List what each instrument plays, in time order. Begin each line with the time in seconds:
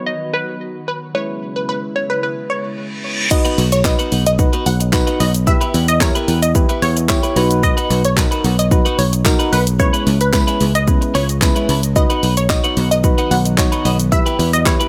Already playing: ambient pad D#3 F#3 B3 F#4, synth keys F#3 B3 D#4 B4, synth pluck C#5
0.06 synth pluck D#5
0.33 synth pluck B4
0.88 synth pluck B4
1.14 ambient pad C#3 G#3 E4, synth keys G#3 C#4 E4 B4, synth pluck B4 C#5
1.56 synth pluck B4
1.69 synth pluck B4
1.96 synth pluck C#5
2.10 synth pluck B4
2.23 synth pluck B4, reverse cymbal
2.50 synth pluck C#5
3.31 synth keys D#4 F#4 B4, synth pluck D#5, muted clean electric guitar stroke, kick, crash, shaker
3.45 clean electric guitar B3 D#4 F#4 B4, closed hi-hat, shaker
3.57 fingered electric bass B1, clean electric guitar B3 D#4 F#4 B4, open hi-hat, shaker
3.72 synth pluck C#5, muted clean electric guitar stroke, closed hi-hat, shaker
3.84 synth keys D#4 F#4 B4, synth pluck D#5, muted clean electric guitar stroke, kick, snare, clap, tambourine, shaker
3.99 clean electric guitar B3 D#4 F#4 B4, closed hi-hat, shaker
4.11 fingered electric bass B1, clean electric guitar B3 D#4 F#4 B4, open hi-hat, shaker
4.27 synth pluck D#5, closed hi-hat, shaker
4.39 synth keys D#4 F#4 B4, muted clean electric guitar stroke, kick, shaker
4.53 clean electric guitar B3 D#4 F#4 B4, closed hi-hat, shaker
4.66 fingered electric bass B1, synth pluck F#5, open hi-hat, shaker
4.80 muted clean electric guitar stroke, closed hi-hat, shaker
4.93 synth keys D#4 F#4 B4, muted clean electric guitar stroke, kick, snare, clap, tambourine, shaker
5.07 clean electric guitar B3 D#4 F#4 B4, closed hi-hat, shaker
5.20 fingered electric bass B1, clean electric guitar B3 D#4 F#4 B4, synth pluck D#5, open hi-hat, shaker
5.34 muted clean electric guitar stroke, closed hi-hat, shaker
5.47 synth keys E4 G4 B4, synth pluck E5, muted clean electric guitar stroke, kick, shaker
5.61 clean electric guitar B3 E4 G4 B4, closed hi-hat, shaker
5.74 fingered electric bass E2, clean electric guitar B3 E4 G4 B4, open hi-hat, shaker
5.88 synth pluck D#5, muted clean electric guitar stroke, closed hi-hat, shaker
6.01 synth keys E4 G4 A#4, synth pluck C#5, muted clean electric guitar stroke, kick, snare, clap, tambourine, shaker
6.15 clean electric guitar B3 E4 G4 B4, closed hi-hat, shaker
6.28 fingered electric bass E2, clean electric guitar B3 E4 G4 B4, open hi-hat, shaker
6.42 synth pluck D#5, closed hi-hat, shaker
6.55 synth keys E4 G4 B4, muted clean electric guitar stroke, kick, shaker
6.69 clean electric guitar B3 E4 G4 B4, closed hi-hat, shaker
6.82 fingered electric bass E2, synth pluck C#5, muted clean electric guitar stroke, open hi-hat, shaker
6.96 muted clean electric guitar stroke, closed hi-hat, shaker
7.09 synth keys E4 G4 C#5, muted clean electric guitar stroke, kick, snare, clap, tambourine, shaker
7.23 clean electric guitar B3 E4 G4 B4, closed hi-hat, shaker
7.36 fingered electric bass B1, clean electric guitar B3 D#4 F#4 B4, synth keys D#4 F#4 B4, open hi-hat, shaker
7.51 closed hi-hat, shaker
7.63 synth pluck D#5, muted clean electric guitar stroke, kick, shaker
7.77 clean electric guitar B3 D#4 F#4 B4, closed hi-hat, shaker
7.90 fingered electric bass B1, clean electric guitar B3 D#4 F#4 B4, open hi-hat, shaker
8.05 synth pluck C#5, closed hi-hat, shaker
8.17 synth keys D#4 F#4 A#4, synth pluck B4, muted clean electric guitar stroke, kick, snare, clap, tambourine, shaker
8.31 clean electric guitar B3 D#4 F#4 B4, closed hi-hat, shaker
8.44 fingered electric bass B1, clean electric guitar B3 D#4 F#4 B4, open hi-hat, shaker
8.59 synth pluck D#5, closed hi-hat, shaker
8.71 synth keys D#4 F#4 B4, muted clean electric guitar stroke, kick, shaker
8.85 clean electric guitar B3 D#4 F#4 B4, closed hi-hat, shaker
8.98 fingered electric bass B1, synth pluck C#5, open hi-hat, shaker
9.12 muted clean electric guitar stroke, closed hi-hat, shaker
9.25 synth keys D#4 F#4 A#4, muted clean electric guitar stroke, kick, snare, clap, tambourine, shaker
9.39 clean electric guitar B3 D#4 F#4 B4, closed hi-hat, shaker
9.52 fingered electric bass B1, clean electric guitar B3 D#4 F#4 B4, synth pluck B4, open hi-hat, shaker
9.66 muted clean electric guitar stroke, closed hi-hat, shaker
9.79 synth keys G#3 B3 C#4 E4 B4, synth pluck C#5, muted clean electric guitar stroke, kick, shaker
9.93 clean electric guitar G#3 C#4 E4 B4, closed hi-hat, shaker
10.06 fingered electric bass C#2, clean electric guitar G#3 C#4 E4 B4, open hi-hat, shaker
10.20 synth pluck B4, muted clean electric guitar stroke, closed hi-hat, shaker
10.33 synth keys G#3 B3 C#4 E4 B4, synth pluck B4, muted clean electric guitar stroke, kick, snare, clap, tambourine, shaker
10.47 clean electric guitar G#3 C#4 E4 B4, closed hi-hat, shaker
10.60 fingered electric bass C#2, clean electric guitar G#3 C#4 E4 B4, open hi-hat, shaker
10.74 synth pluck D#5, muted clean electric guitar stroke, closed hi-hat, shaker
10.88 synth keys G#3 B3 C#4 E4 B4, kick, shaker
11.02 muted clean electric guitar stroke, closed hi-hat, shaker
11.14 fingered electric bass C#2, clean electric guitar G#3 C#4 E4 B4, synth pluck C#5, open hi-hat, shaker
11.29 muted clean electric guitar stroke, closed hi-hat, shaker
11.41 synth keys G#3 B3 C#4 E4 B4, muted clean electric guitar stroke, kick, snare, clap, tambourine, shaker
11.56 clean electric guitar G#3 C#4 E4 B4, closed hi-hat, shaker
11.68 fingered electric bass C#2, clean electric guitar G#3 C#4 E4 B4, open hi-hat, shaker
11.83 closed hi-hat, shaker
11.96 ambient pad D#3 F#3 B3 F#4, synth keys D#4 F#4 B4, synth pluck D#5, muted clean electric guitar stroke, kick, shaker
12.10 clean electric guitar B3 D#4 F#4 B4, closed hi-hat, shaker
12.23 fingered electric bass B1, clean electric guitar B3 D#4 F#4 B4, open hi-hat, shaker
12.37 synth pluck C#5, closed hi-hat, shaker
12.49 synth keys D#4 F#4 C#5, synth pluck D#5, muted clean electric guitar stroke, kick, snare, clap, tambourine, shaker
12.64 clean electric guitar B3 D#4 F#4 B4, closed hi-hat, shaker
12.77 fingered electric bass B1, clean electric guitar B3 D#4 F#4 B4, open hi-hat, shaker
12.91 synth pluck D#5, muted clean electric guitar stroke, closed hi-hat, shaker
13.04 synth keys D#4 F#4 B4, muted clean electric guitar stroke, kick, shaker
13.18 clean electric guitar B3 D#4 F#4 B4, closed hi-hat, shaker
13.31 fingered electric bass B1, synth pluck F#5, muted clean electric guitar stroke, open hi-hat, shaker
13.45 muted clean electric guitar stroke, closed hi-hat, shaker
13.57 synth keys D#4 F#4 C#5, muted clean electric guitar stroke, kick, snare, clap, tambourine, shaker
13.72 clean electric guitar B3 D#4 F#4 B4, closed hi-hat, shaker
13.85 fingered electric bass B1, clean electric guitar B3 D#4 F#4 B4, synth pluck D#5, open hi-hat, shaker
14.00 closed hi-hat, shaker
14.12 ambient pad E3 G3 G4, synth keys E4 G4 B4, synth pluck E5, muted clean electric guitar stroke, kick, shaker
14.26 clean electric guitar B3 E4 G4 B4, closed hi-hat, shaker
14.39 fingered electric bass E2, clean electric guitar B3 E4 G4 B4, open hi-hat, shaker
14.53 synth pluck D#5, closed hi-hat, shaker
14.66 synth keys E4 G4 B4, synth pluck C#5, muted clean electric guitar stroke, kick, snare, clap, tambourine, shaker
14.80 clean electric guitar B3 E4 G4 B4, closed hi-hat, shaker